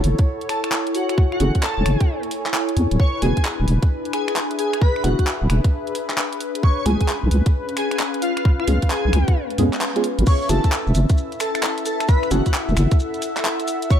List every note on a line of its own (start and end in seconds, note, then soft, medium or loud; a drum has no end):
0.00 0.15 F#1 medium
0.00 3.61 E4 medium
0.00 2.77 A4 medium
0.00 3.01 C#5 medium
0.00 0.54 F#5 medium
0.00 open hi-hat loud
0.19 kick loud
0.19 closed hi-hat medium
0.41 4.33 G#5 medium
0.41 closed hi-hat soft
0.49 0.59 A4 medium
0.49 finger snap medium
0.49 open hi-hat loud
0.64 0.69 A4 medium
0.64 finger snap medium
0.64 closed hi-hat medium
0.72 clap loud
0.87 closed hi-hat soft
0.95 1.04 F#4 medium
0.95 open hi-hat loud
1.09 1.14 F#4 medium
1.09 finger snap medium
1.09 closed hi-hat medium
1.18 kick loud
1.32 1.50 F#4 medium
1.32 finger snap soft
1.40 1.51 F#1 loud
1.40 1.49 C#4 medium
1.40 1.49 E4 medium
1.40 1.49 F#4 medium
1.40 1.49 G#4 medium
1.40 1.49 A4 medium
1.40 open hi-hat loud
1.55 kick medium
1.55 closed hi-hat medium
1.63 2.08 A4 medium
1.63 clap loud
1.78 1.83 E1 medium
1.86 1.96 F#1 medium
1.86 finger snap medium
1.86 open hi-hat loud
2.00 kick loud
2.00 closed hi-hat medium
2.23 closed hi-hat soft
2.31 open hi-hat loud
2.46 clap medium
2.46 closed hi-hat medium
2.54 clap loud
2.69 closed hi-hat medium
2.77 2.87 E2 loud
2.77 6.63 D4 medium
2.77 open hi-hat loud
2.91 2.97 D1 loud
2.91 closed hi-hat medium
2.99 10.28 B4 medium
2.99 3.09 C#5 medium
2.99 kick loud
3.14 3.19 C#5 medium
3.22 3.33 E1 loud
3.22 3.31 B3 medium
3.22 3.31 D4 medium
3.22 3.31 E4 medium
3.22 3.31 F#4 medium
3.22 3.31 G#4 loud
3.22 3.42 G#4 loud
3.22 open hi-hat loud
3.37 kick medium
3.37 closed hi-hat medium
3.45 clap loud
3.60 3.65 D1 loud
3.66 3.78 E1 medium
3.66 7.75 G#4 medium
3.66 open hi-hat loud
3.83 6.63 E5 medium
3.83 kick loud
3.83 closed hi-hat medium
4.05 closed hi-hat soft
4.13 4.23 G#4 medium
4.13 finger snap medium
4.13 open hi-hat loud
4.28 4.33 G#4 medium
4.28 finger snap medium
4.28 closed hi-hat medium
4.36 clap loud
4.51 closed hi-hat medium
4.59 4.79 G#4 medium
4.59 open hi-hat loud
4.73 finger snap soft
4.73 closed hi-hat medium
4.81 5.02 B4 loud
4.81 kick loud
4.96 finger snap soft
5.04 5.15 E1 loud
5.04 5.13 B3 medium
5.04 5.13 D4 medium
5.04 5.13 E4 medium
5.04 5.13 F#4 medium
5.04 5.13 G#4 loud
5.04 open hi-hat loud
5.19 5.24 F#4 medium
5.19 kick medium
5.19 closed hi-hat medium
5.27 clap loud
5.42 5.47 D1 loud
5.50 5.60 E1 loud
5.50 finger snap medium
5.50 open hi-hat loud
5.64 kick loud
5.64 closed hi-hat medium
5.87 closed hi-hat soft
5.95 open hi-hat loud
6.10 clap medium
6.10 closed hi-hat medium
6.18 clap loud
6.33 closed hi-hat medium
6.41 open hi-hat loud
6.55 closed hi-hat medium
6.63 12.07 C#4 medium
6.63 6.73 C#5 medium
6.63 kick loud
6.78 6.83 C#5 medium
6.86 6.96 C#2 loud
6.86 6.95 G#3 medium
6.86 6.95 B3 medium
6.86 6.95 C#4 medium
6.86 6.95 F4 medium
6.86 6.95 G#4 loud
6.86 7.06 G#4 medium
6.86 open hi-hat loud
7.01 kick medium
7.01 closed hi-hat medium
7.08 clap loud
7.14 11.79 B4 medium
7.23 7.29 B1 loud
7.31 7.42 C#2 loud
7.31 open hi-hat loud
7.46 10.27 F5 medium
7.46 kick loud
7.46 closed hi-hat medium
7.69 closed hi-hat soft
7.77 7.86 G#4 medium
7.77 finger snap medium
7.77 open hi-hat loud
7.91 7.97 G#4 medium
7.91 finger snap medium
7.91 closed hi-hat medium
7.99 clap loud
8.14 closed hi-hat medium
8.22 8.31 F4 medium
8.22 open hi-hat loud
8.37 8.42 F4 medium
8.37 finger snap medium
8.37 closed hi-hat medium
8.45 kick loud
8.60 8.78 F4 medium
8.60 finger snap soft
8.68 8.78 C#2 loud
8.68 8.76 G#3 medium
8.68 8.76 B3 medium
8.68 8.76 C#4 medium
8.68 8.76 F4 medium
8.68 8.76 G#4 loud
8.68 open hi-hat loud
8.82 kick medium
8.82 closed hi-hat medium
8.90 9.36 G#4 medium
8.90 clap loud
9.05 9.11 B1 loud
9.13 9.24 C#2 loud
9.13 finger snap medium
9.13 open hi-hat loud
9.28 kick loud
9.28 closed hi-hat medium
9.50 closed hi-hat soft
9.58 9.69 F2 medium
9.58 9.67 G#3 loud
9.58 9.67 B3 medium
9.58 9.67 C#4 medium
9.58 9.67 F4 loud
9.58 9.67 G#4 loud
9.58 open hi-hat loud
9.73 clap medium
9.73 closed hi-hat medium
9.81 clap loud
9.96 10.04 G#3 loud
9.96 10.04 B3 medium
9.96 10.04 C#4 medium
9.96 10.04 F4 loud
9.96 10.04 G#4 loud
9.96 closed hi-hat medium
10.04 open hi-hat loud
10.19 10.24 G#1 loud
10.19 closed hi-hat medium
10.27 14.00 E4 medium
10.27 10.36 C#5 medium
10.27 14.00 E5 medium
10.27 kick loud
10.27 crash loud
10.27 shaker soft
10.41 10.47 C#5 medium
10.41 shaker soft
10.49 10.60 F#1 loud
10.49 10.58 C#4 medium
10.49 10.58 E4 medium
10.49 10.58 F#4 medium
10.49 10.58 G#4 medium
10.49 10.58 A4 medium
10.49 10.70 A4 medium
10.49 open hi-hat loud
10.49 shaker medium
10.64 kick medium
10.64 closed hi-hat medium
10.64 shaker soft
10.72 clap loud
10.72 shaker soft
10.78 14.00 A4 medium
10.87 10.93 E1 loud
10.87 shaker soft
10.95 11.05 F#1 medium
10.95 open hi-hat medium
10.95 shaker medium
11.09 kick loud
11.09 closed hi-hat medium
11.09 shaker soft
11.18 shaker soft
11.32 closed hi-hat soft
11.32 shaker soft
11.40 11.50 A4 medium
11.40 finger snap medium
11.40 open hi-hat loud
11.40 shaker medium
11.53 11.60 A4 medium
11.53 14.00 F#5 medium
11.53 finger snap medium
11.53 closed hi-hat medium
11.53 shaker soft
11.63 clap loud
11.63 shaker soft
11.78 closed hi-hat medium
11.78 shaker soft
11.86 12.06 A4 medium
11.86 open hi-hat loud
11.86 shaker medium
12.00 finger snap medium
12.00 closed hi-hat medium
12.00 shaker soft
12.08 12.29 B4 medium
12.08 kick loud
12.08 shaker soft
12.23 finger snap soft
12.23 shaker soft
12.31 12.42 F#1 loud
12.31 12.40 C#4 medium
12.31 12.40 E4 medium
12.31 12.40 F#4 medium
12.31 12.41 F#4 medium
12.31 12.40 G#4 medium
12.31 12.40 A4 loud
12.31 open hi-hat loud
12.31 shaker medium
12.46 12.51 F#4 medium
12.46 kick medium
12.46 closed hi-hat medium
12.46 shaker soft
12.54 clap loud
12.54 shaker soft
12.69 12.74 E1 loud
12.69 shaker soft
12.77 12.87 F#1 loud
12.77 finger snap medium
12.77 open hi-hat medium
12.77 shaker medium
12.91 kick loud
12.91 closed hi-hat medium
12.91 shaker soft
12.99 shaker soft
13.14 closed hi-hat soft
13.14 shaker soft
13.22 open hi-hat loud
13.22 shaker medium
13.37 clap medium
13.37 closed hi-hat medium
13.37 shaker soft
13.45 clap loud
13.45 shaker soft
13.60 closed hi-hat soft
13.60 shaker soft
13.68 open hi-hat medium
13.68 shaker medium
13.82 closed hi-hat medium
13.82 shaker soft
13.90 14.00 C#5 medium
13.90 kick loud
13.90 shaker soft